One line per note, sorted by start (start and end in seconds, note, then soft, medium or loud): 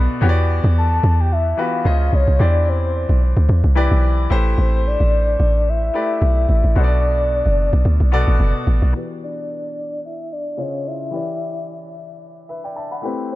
0.00 0.24 B2 medium
0.00 0.21 B3 medium
0.00 0.22 F#4 medium
0.00 0.24 A4 medium
0.00 0.24 D5 loud
0.00 0.23 E5 medium
0.00 0.23 F#5 medium
0.00 0.20 B5 medium
0.21 0.60 E2 loud
0.21 1.09 E3 medium
0.21 1.09 B3 medium
0.21 1.09 F#4 medium
0.21 1.10 G4 medium
0.21 0.29 C#5 medium
0.29 1.13 D5 loud
0.64 1.00 E2 loud
0.78 1.21 A5 loud
1.04 1.54 E2 loud
1.20 1.34 G5 loud
1.32 1.61 E5 loud
1.57 1.85 E3 medium
1.57 1.85 B3 medium
1.57 1.85 F#4 medium
1.57 1.86 G4 medium
1.57 1.86 B4 medium
1.57 2.16 F5 loud
1.84 2.10 C#2 loud
1.84 2.30 C#3 medium
1.84 2.30 C#4 medium
1.84 2.30 F4 medium
1.84 2.30 C5 medium
1.84 2.31 D#5 medium
2.13 2.26 C2 medium
2.13 2.43 C#5 medium
2.28 2.39 C2 medium
2.39 3.06 E2 loud
2.39 3.27 E3 medium
2.39 3.27 E4 medium
2.39 3.28 G4 medium
2.39 3.28 C5 medium
2.39 3.28 D5 medium
2.39 2.70 D5 loud
2.69 3.22 C5 medium
3.09 3.34 B1 medium
3.37 3.48 D2 medium
3.49 3.63 E2 loud
3.64 3.89 C2 loud
3.75 4.30 E3 medium
3.75 4.29 E4 medium
3.75 4.29 G4 medium
3.75 4.30 B4 medium
3.75 4.31 D5 loud
3.91 4.27 B1 loud
4.30 4.56 A1 loud
4.30 5.18 A3 medium
4.30 5.18 E4 medium
4.30 5.19 G4 medium
4.30 5.19 B4 medium
4.30 5.19 C5 loud
4.58 4.97 A1 loud
4.58 4.88 C5 loud
4.87 5.70 D5 loud
5.00 5.37 A1 loud
5.40 5.90 A1 loud
5.69 6.80 E5 loud
5.94 6.61 A3 medium
5.94 6.61 E4 medium
5.94 6.61 G4 medium
5.94 6.61 B4 medium
5.94 6.61 D5 medium
6.22 6.47 B1 loud
6.49 6.63 A1 loud
6.64 6.75 A1 medium
6.75 7.42 B1 loud
6.75 7.64 B2 medium
6.75 7.64 B3 medium
6.75 7.64 F#4 medium
6.75 7.64 A4 medium
6.75 6.84 C5 medium
6.75 8.41 D5 loud
6.84 7.68 D5 medium
7.46 7.71 F#1 medium
7.73 7.84 B1 medium
7.85 7.99 D2 loud
8.00 8.25 B1 medium
8.12 8.79 B2 medium
8.12 8.79 B3 medium
8.12 8.79 F#4 medium
8.12 8.79 A4 medium
8.12 8.80 D5 loud
8.28 8.39 A1 medium
8.40 8.54 F#1 medium
8.67 8.81 A1 loud
8.82 8.93 B1 medium
8.93 10.54 E3 medium
8.93 10.54 B3 medium
8.93 10.55 F#4 medium
8.93 10.55 G4 medium
8.93 9.08 B4 medium
9.23 10.00 D5 loud
10.05 10.34 E5 loud
10.32 10.61 D5 loud
10.57 11.12 C#3 medium
10.57 11.12 C#4 medium
10.57 11.13 F4 medium
10.57 11.13 C5 medium
10.57 10.88 C#5 loud
10.57 11.13 D#5 medium
10.87 11.95 E5 loud
11.11 12.99 E3 medium
11.11 12.99 E4 medium
11.11 13.00 G4 medium
11.11 12.20 B4 medium
11.11 12.21 D5 medium
12.49 12.64 B4 medium
12.49 12.63 E5 medium
12.64 12.76 D5 medium
12.64 12.76 G5 medium
12.76 12.91 E5 medium
12.76 12.91 A5 medium
12.91 13.18 F#5 medium
12.91 13.17 B5 medium
13.02 13.35 A3 medium
13.02 13.35 C4 medium
13.02 13.35 E4 medium
13.02 13.35 G4 medium
13.02 13.35 B4 medium